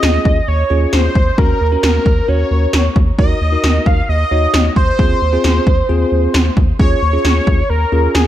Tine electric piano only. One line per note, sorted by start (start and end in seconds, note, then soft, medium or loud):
0.00 0.38 C#4 medium
0.00 0.38 F4 medium
0.00 0.38 G#4 medium
0.70 1.10 C#4 medium
0.70 1.10 F4 medium
0.70 1.10 G#4 medium
1.38 1.58 C#4 medium
1.38 1.58 F#4 medium
1.38 1.58 A#4 medium
1.72 2.05 C#4 medium
1.72 2.05 F#4 medium
1.72 2.05 A#4 medium
2.28 2.81 C#4 medium
2.28 2.81 F#4 medium
2.28 2.81 A#4 medium
3.19 3.39 D#4 medium
3.19 3.38 F#4 medium
3.19 3.38 A#4 medium
3.52 3.99 D#4 medium
3.52 3.99 F#4 medium
3.52 3.99 A#4 medium
4.31 4.71 D#4 medium
4.31 4.71 F#4 medium
4.31 4.71 C#5 medium
4.99 5.19 C4 medium
4.99 5.19 F4 medium
4.99 5.19 G#4 medium
5.33 5.66 C4 medium
5.33 5.66 F4 medium
5.33 5.66 G#4 medium
5.89 6.42 C4 medium
5.89 6.42 F4 medium
5.89 6.42 G#4 medium
6.79 6.99 C#4 medium
6.79 6.99 F4 medium
6.79 6.99 G#4 medium
7.13 7.60 C#4 medium
7.13 7.60 F4 medium
7.13 7.60 G#4 medium
7.92 8.27 C#4 medium
7.92 8.27 F4 medium
7.92 8.27 G#4 medium